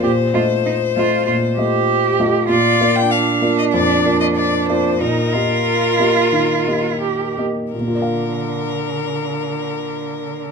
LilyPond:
<<
  \new Staff \with { instrumentName = "Violin" } { \time 4/4 \key bes \major \tempo 4 = 93 c''2.~ c''8 r8 | d''8. g''16 f''8. ees''16 d''8. ees''16 d''8 c''8 | bes'2.~ bes'8 r8 | bes'1 | }
  \new Staff \with { instrumentName = "Cello" } { \time 4/4 \key bes \major g'8 f'8 ees'8 f'8 f'8 g'4. | f'4 d'2. | ees'8 f'2~ f'8 g'8 r8 | d1 | }
  \new Staff \with { instrumentName = "Grand piano" } { \time 4/4 \key bes \major bes,8 <a f' ees''>4 <a f' ees''>8 bes,8 <a f' ees''>4 <a f' ees''>8 | bes,8 <bes f' d''>4 <bes f' d''>8 f,8 <bes f' d''>4 <bes f' d''>8 | bes,8 <bes g' ees''>4 <bes g' ees''>8 ees8 <bes g' ees''>4 <bes g' ees''>8 | <bes, bes f' d'' f''>1 | }
>>